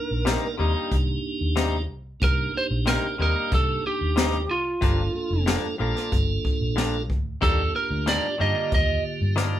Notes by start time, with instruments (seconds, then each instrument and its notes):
Already playing: tonewheel organ A#3 D4 D#4 A#4, lead electric guitar A#4
0.11 fingered electric bass A#1
0.25 clean electric guitar C3 G3 A#3 D#4, snare, closed hi-hat
0.58 fingered electric bass D#2, clean electric guitar C3 G3 A#3 D#4, tonewheel organ A#3 D4 D#4 G4
0.74 clean electric guitar G3 A#3 D#4
0.91 fingered electric bass C2, kick, closed hi-hat
1.41 fingered electric bass D#2
1.56 clean electric guitar C3 G3 A#3 D#4, snare, closed hi-hat
1.90 fingered electric bass C2
2.20 fingered electric bass C2, tonewheel organ A#3 D4 D#4 G4, lead electric guitar A#4, kick, closed hi-hat
2.54 tonewheel organ A#3 D4 D#4 G4, lead electric guitar C5
2.70 fingered electric bass A#1
2.86 clean electric guitar C3 G3 A#3 D#4, lead electric guitar A#4, snare, closed hi-hat
3.18 fingered electric bass D#2, clean electric guitar C3 G3 A#3 D#4, tonewheel organ A#3 D4 D#4 G4, lead electric guitar A#4
3.34 clean electric guitar G3 A#3 D#4
3.52 fingered electric bass C2, lead electric guitar A4, kick, closed hi-hat
3.87 lead electric guitar G4
4.01 fingered electric bass D#2
4.16 clean electric guitar C3 G3 A#3 D#4, snare, closed hi-hat
4.50 fingered electric bass C2, lead electric guitar F4
4.81 fingered electric bass G1, clean electric guitar G2 F3 A#3 D4, tonewheel organ A#3 D4 F4 A4, kick, closed hi-hat
5.14 tonewheel organ A#3 D4 F4 A4
5.30 fingered electric bass F1
5.46 clean electric guitar G2 F3 A#3 D4, snare, closed hi-hat
5.78 fingered electric bass A#1, clean electric guitar G2 F3 A#3 D4, tonewheel organ A#3 D4 F4 A4
5.94 clean electric guitar F3 A#3 D4, snare
6.12 fingered electric bass G1, kick, closed hi-hat
6.45 kick
6.61 fingered electric bass A#1
6.76 clean electric guitar G2 F3 A#3 D4, snare, closed hi-hat
7.10 fingered electric bass D2, kick
7.41 fingered electric bass D#2, clean electric guitar D#3 G3 A#3 D4, tonewheel organ A#3 D4 F4 G4, lead electric guitar A4, kick, closed hi-hat
7.73 tonewheel organ A#3 D4 F4 G4, lead electric guitar A#4
7.90 fingered electric bass D2
8.06 clean electric guitar D#3 G3 A#3 D4, lead electric guitar D5, snare, closed hi-hat
8.38 fingered electric bass G2, tonewheel organ D3 A#3 F4 G4, clean electric guitar D#3 G3 A#3 D4, lead electric guitar D#5
8.55 clean electric guitar G3 A#3 D4
8.72 fingered electric bass D#2, lead electric guitar D#5, kick, closed hi-hat
9.21 fingered electric bass G2
9.36 clean electric guitar D#3 G3 A#3 D4, snare, closed hi-hat